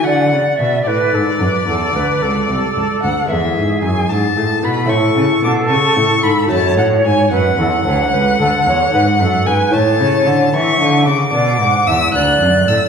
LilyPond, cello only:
\new Staff \with { instrumentName = "Cello" } { \clef bass \time 12/8 \key fis \minor \tempo 4. = 75 d8 cis8 b,8 a,8 gis,8 fis,8 e,8 d,8 cis,8 c,8 cis,8 d,8 | e,8 gis,8 fis,8 gis,8 a,8 b,8 a,8 cis8 b,8 cis8 a,8 gis,8 | fis,8 a,8 gis,8 fis,8 e,8 d,8 cis,8 d,8 e,8 gis,8 fis,8 gis,8 | \key a \major a,8 cis8 d8 e8 d8 cis8 b,8 gis,8 e,8 d,8 fis,8 a,8 | }